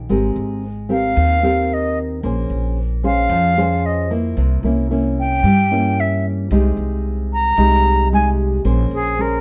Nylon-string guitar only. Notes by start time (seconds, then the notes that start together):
0.09 G#3 C4 G4 A#4
0.89 C4 G4 A#4
1.16 D#3
1.43 C4 G4 A#4
2.23 A#3 C#4 G#4 C5
3.03 C#4 G#4 C5
3.30 F3
3.57 C#4 G#4 C5
4.11 A#3 E4
4.38 C3
4.64 A#3 C#4 E4
4.91 A#3 C#4 E4
5.44 G3
5.71 A#3 C#4 E4
6.52 C3 G#3 D#4 G4
7.57 C3 G#3 D#4 G4
8.12 G#3 D#4 G4
8.65 A#3 C#4 G#4 C5
9.19 C#4 G#4 C5